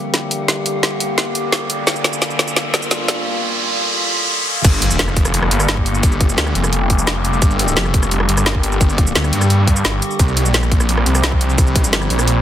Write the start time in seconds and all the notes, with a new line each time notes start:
Already playing: D3 G3 A#3 G4, riser
0.14 snare, closed hi-hat
0.31 closed hi-hat
0.48 snare, closed hi-hat
0.66 closed hi-hat
0.83 snare, closed hi-hat
1.00 closed hi-hat
1.18 snare, closed hi-hat
1.35 closed hi-hat
1.52 snare, closed hi-hat
1.70 closed hi-hat
1.87 F4, snare, closed hi-hat, shaker
1.96 shaker
2.04 snare, closed hi-hat
2.13 shaker
2.22 snare, closed hi-hat, shaker
2.30 shaker
2.39 snare, closed hi-hat
2.48 shaker
2.56 snare, closed hi-hat
2.74 snare, closed hi-hat
2.82 shaker
2.91 snare, closed hi-hat, shaker
3.08 snare, closed hi-hat, shaker
4.65 G1 D3 G3 A#3 G4, kick, closed hi-hat, crash, impact, shaker
4.73 shaker
4.82 closed hi-hat
4.91 shaker
4.99 F1, snare, closed hi-hat, shaker
5.08 cross-stick, shaker
5.17 kick, closed hi-hat
5.25 cross-stick, shaker
5.34 closed hi-hat
5.43 cross-stick
5.51 G1, closed hi-hat
5.60 cross-stick, shaker
5.69 snare, closed hi-hat, shaker
5.77 kick
5.86 closed hi-hat, shaker
5.95 shaker
6.03 G1, kick, closed hi-hat, shaker
6.12 shaker
6.21 kick, closed hi-hat
6.29 shaker
6.38 D2, snare, closed hi-hat, shaker
6.47 cross-stick, shaker
6.55 F1, closed hi-hat
6.64 cross-stick, shaker
6.73 closed hi-hat
6.90 kick, closed hi-hat
6.99 shaker
7.07 snare, closed hi-hat, shaker
7.25 closed hi-hat, shaker
7.33 shaker
7.42 G1, kick, closed hi-hat, shaker
7.51 shaker
7.59 closed hi-hat
7.68 shaker
7.77 F1, snare, closed hi-hat, shaker
7.85 cross-stick, shaker
7.94 kick, closed hi-hat
8.03 cross-stick, shaker
8.11 closed hi-hat
8.20 cross-stick
8.29 G1, closed hi-hat
8.37 cross-stick, shaker
8.46 snare, closed hi-hat, shaker
8.55 kick
8.63 closed hi-hat, shaker
8.72 shaker
8.81 G1, kick, closed hi-hat, shaker
8.89 shaker
8.98 kick, closed hi-hat
9.07 shaker
9.15 D2, snare, closed hi-hat, shaker
9.24 cross-stick, shaker
9.33 G2, closed hi-hat
9.41 cross-stick, shaker
9.50 closed hi-hat
9.67 kick, closed hi-hat
9.76 shaker
9.85 G1, snare, closed hi-hat, shaker
10.02 closed hi-hat, shaker
10.11 shaker
10.19 C2 F3 C4 G4, kick, closed hi-hat, shaker
10.28 shaker
10.37 closed hi-hat
10.46 shaker
10.54 A#1, snare, closed hi-hat, shaker
10.63 cross-stick, shaker
10.72 kick, closed hi-hat
10.80 cross-stick, shaker
10.89 closed hi-hat
10.98 cross-stick
11.06 C2, closed hi-hat
11.15 cross-stick, shaker
11.24 snare, closed hi-hat, shaker
11.32 kick
11.41 closed hi-hat, shaker
11.50 shaker
11.58 C2, kick, closed hi-hat, shaker
11.67 shaker
11.76 kick, closed hi-hat
11.84 shaker
11.93 G1, snare, closed hi-hat, shaker
12.02 cross-stick, shaker
12.10 A#1, closed hi-hat
12.19 cross-stick, shaker
12.28 closed hi-hat